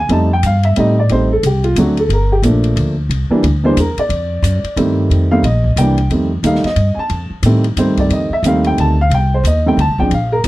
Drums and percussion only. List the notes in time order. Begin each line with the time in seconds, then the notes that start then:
0.09 ride
0.43 hi-hat pedal, ride
0.63 ride
0.76 ride
1.09 ride
1.43 hi-hat pedal, ride
1.64 ride
1.76 hi-hat pedal, ride
1.97 ride
2.10 ride
2.43 hi-hat pedal, ride
2.64 ride
2.77 ride
3.11 ride
3.44 ride
3.77 hi-hat pedal, ride
3.98 ride
4.10 ride
4.44 hi-hat pedal, ride
4.64 ride
4.77 ride
5.11 ride
5.44 ride
5.64 kick
5.77 hi-hat pedal, ride
5.98 ride
6.11 ride
6.44 hi-hat pedal, ride
6.55 snare
6.64 snare, ride
6.76 ride
7.10 ride
7.43 hi-hat pedal, ride
7.64 ride
7.77 hi-hat pedal, ride
7.97 kick, ride
8.10 ride
8.44 hi-hat pedal, ride
8.64 ride
8.78 ride
9.11 ride
9.45 hi-hat pedal, ride
9.79 ride
9.98 kick
10.11 ride
10.44 hi-hat pedal, ride